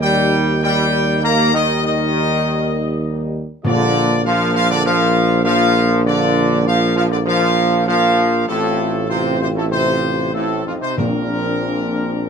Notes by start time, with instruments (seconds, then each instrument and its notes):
Already playing: tuba D#2, french horn section G3 D#4
0.02 trombone section G3, trumpet section G5
0.63 trombone section G3, trumpet section G5
1.23 trombone section A#3, trumpet section A#5
1.54 trombone section D#3, trumpet section D#5
1.84 trombone section D#3, trumpet section D#5
3.65 tuba A#1, timpani A#2, trombone section D3, french horn section A#3 F4, trumpet section D5
4.25 trombone section F3, french horn section A#3 F4, trumpet section F5
4.54 trombone section F3, trumpet section F5
4.70 trombone section D3, trumpet section D5
4.85 trombone section F3, french horn section A#3 F4, trumpet section F5
5.45 trombone section F3, french horn section A#3 F4, trumpet section F5
6.06 trombone section D3, french horn section A#3 F4, trumpet section D5
6.66 trombone section F3, french horn section A#3 F4, trumpet section F5
6.96 trombone section F3, trumpet section F5
7.11 trombone section D3, trumpet section D5
7.26 trombone section F3, french horn section A#3 F4, trumpet section F5
7.88 trombone section F3, french horn section A#3 F4, trumpet section F5
8.48 tuba A1, trombone section A2, french horn section C4 F4, trumpet section A4
9.09 trombone section C3, french horn section C4 F4, trumpet section C5
9.40 trombone section C3, trumpet section C5
9.55 trombone section A2, trumpet section A4
9.71 trombone section C3, french horn section C4 F4, trumpet section C5
10.34 trombone section A2, french horn section C4 F4, trumpet section A4
10.65 trombone section F2, french horn section D#4, trumpet section F4
10.80 trombone section C3, trumpet section C5
10.97 tuba A#1, trombone section A#2, timpani A#2, french horn section C4 D4, trumpet section A#4